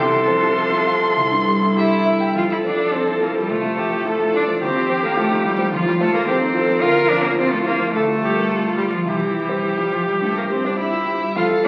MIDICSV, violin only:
0, 0, Header, 1, 2, 480
1, 0, Start_track
1, 0, Key_signature, -1, "major"
1, 0, Tempo, 597015
1, 1905, Time_signature, 4, 2, 24, 8
1, 1905, Tempo, 564440
1, 3825, Tempo, 553506
1, 7185, Tempo, 573066
1, 9846, End_track
2, 0, Start_track
2, 0, Title_t, "Violin"
2, 0, Program_c, 0, 40
2, 0, Note_on_c, 0, 84, 103
2, 1401, Note_off_c, 0, 84, 0
2, 1434, Note_on_c, 0, 76, 67
2, 1897, Note_on_c, 0, 77, 60
2, 1910, Note_off_c, 0, 76, 0
2, 2016, Note_on_c, 0, 76, 48
2, 2029, Note_off_c, 0, 77, 0
2, 2136, Note_off_c, 0, 76, 0
2, 2141, Note_on_c, 0, 74, 48
2, 2379, Note_on_c, 0, 72, 48
2, 2392, Note_off_c, 0, 74, 0
2, 2619, Note_on_c, 0, 70, 44
2, 2631, Note_off_c, 0, 72, 0
2, 2738, Note_on_c, 0, 67, 48
2, 2751, Note_off_c, 0, 70, 0
2, 2867, Note_on_c, 0, 69, 58
2, 2880, Note_off_c, 0, 67, 0
2, 3578, Note_on_c, 0, 74, 65
2, 3590, Note_off_c, 0, 69, 0
2, 3814, Note_off_c, 0, 74, 0
2, 3819, Note_on_c, 0, 72, 57
2, 4175, Note_off_c, 0, 72, 0
2, 4188, Note_on_c, 0, 70, 63
2, 4303, Note_off_c, 0, 70, 0
2, 4310, Note_on_c, 0, 69, 62
2, 4380, Note_off_c, 0, 69, 0
2, 4554, Note_on_c, 0, 67, 64
2, 4792, Note_on_c, 0, 65, 68
2, 4805, Note_off_c, 0, 67, 0
2, 4903, Note_off_c, 0, 65, 0
2, 4908, Note_on_c, 0, 67, 70
2, 4953, Note_off_c, 0, 67, 0
2, 5024, Note_on_c, 0, 69, 75
2, 5144, Note_on_c, 0, 70, 71
2, 5157, Note_off_c, 0, 69, 0
2, 5273, Note_on_c, 0, 72, 71
2, 5286, Note_off_c, 0, 70, 0
2, 5747, Note_on_c, 0, 77, 84
2, 5760, Note_off_c, 0, 72, 0
2, 5977, Note_off_c, 0, 77, 0
2, 5982, Note_on_c, 0, 74, 68
2, 6097, Note_off_c, 0, 74, 0
2, 6106, Note_on_c, 0, 70, 63
2, 6223, Note_on_c, 0, 72, 70
2, 6236, Note_off_c, 0, 70, 0
2, 6331, Note_off_c, 0, 72, 0
2, 6336, Note_on_c, 0, 69, 64
2, 6385, Note_off_c, 0, 69, 0
2, 6461, Note_on_c, 0, 70, 65
2, 6531, Note_off_c, 0, 70, 0
2, 6702, Note_on_c, 0, 69, 69
2, 7407, Note_off_c, 0, 69, 0
2, 7412, Note_on_c, 0, 67, 48
2, 7534, Note_on_c, 0, 65, 48
2, 7547, Note_off_c, 0, 67, 0
2, 7650, Note_off_c, 0, 65, 0
2, 7655, Note_on_c, 0, 64, 54
2, 8251, Note_on_c, 0, 67, 48
2, 8263, Note_off_c, 0, 64, 0
2, 8378, Note_on_c, 0, 65, 47
2, 8391, Note_off_c, 0, 67, 0
2, 8490, Note_off_c, 0, 65, 0
2, 8495, Note_on_c, 0, 67, 42
2, 8545, Note_off_c, 0, 67, 0
2, 8624, Note_on_c, 0, 69, 52
2, 8747, Note_on_c, 0, 70, 50
2, 8760, Note_off_c, 0, 69, 0
2, 8865, Note_on_c, 0, 72, 49
2, 8878, Note_off_c, 0, 70, 0
2, 8984, Note_off_c, 0, 72, 0
2, 8989, Note_on_c, 0, 74, 45
2, 9036, Note_off_c, 0, 74, 0
2, 9100, Note_on_c, 0, 76, 60
2, 9580, Note_on_c, 0, 77, 75
2, 9592, Note_off_c, 0, 76, 0
2, 9812, Note_off_c, 0, 77, 0
2, 9817, Note_on_c, 0, 74, 65
2, 9846, Note_off_c, 0, 74, 0
2, 9846, End_track
0, 0, End_of_file